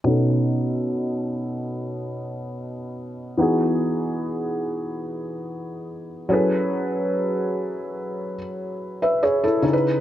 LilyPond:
\new Staff \with { instrumentName = "Felt piano" } { \time 4/4 \key fis \dorian \tempo 4 = 72 << { r1 | r1 | r2 r8. <b' e''>16 <gis' cis''>16 <e' a'>8 r16 | } \\ { <b, b cis' dis' a'>1 | <e b dis' fis' gis'>2.~ <e b dis' fis' gis'>8 <fis cis' e' gis' a' b'>8~ | <fis cis' e' gis' a' b'>2.~ <fis cis' e' gis' a' b'>8 <cis cis' dis' e' a' b'>8 | } >> }